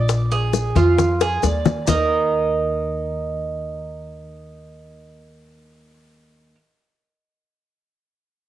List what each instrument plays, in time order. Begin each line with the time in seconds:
Already playing: upright bass A#1, cuban tres D5
0.09 high bongo, high conga, maracas
0.31 cuban tres G#4, high bongo, high conga, maracas
0.53 high bongo, high conga, maracas
0.75 upright bass F2, cuban tres F4, high bongo, low conga, maracas
0.98 high bongo, high conga, low conga, maracas
1.21 cuban tres G#4, high bongo, high conga, maracas
1.43 upright bass D#2, cuban tres D5, high bongo, high conga, maracas
1.66 low bongo, low conga, maracas
1.87 upright bass D#2, cuban tres D#4 A#4 D#5, low bongo, low conga, maracas